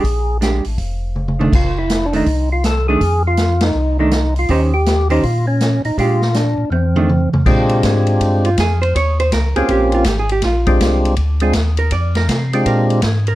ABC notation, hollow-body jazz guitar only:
X:1
M:4/4
L:1/8
Q:"Swing" 1/4=162
K:Bbmix
V:1 name="Hollow-body jazz guitar"
z2 [A,DG] z4 [E,=A,D] | z3 [E,=A,D] z3 [E,A,D] | z4 z [E,=A,D] z2 | [E,_DGc] z2 [E,DGc] z4 |
[A,DG] z4 [E,=A,D] z2 | z4 z F A c | _d c B A G F (3G A G | F4 z3 B |
d B3 B3 B |]